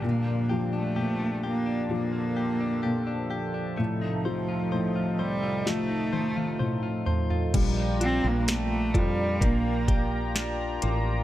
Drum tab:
CC |----------------|----------------|x---------------|
HH |----------------|----------------|x-x-x-x-x-x-x-x-|
SD |----------------|--------o-------|----o-------o---|
T1 |----------------|----------oo----|----------------|
T2 |----------------|------------o---|----------------|
FT |----------------|--------------oo|----------------|
BD |----------------|----------------|o-----o-o-o-----|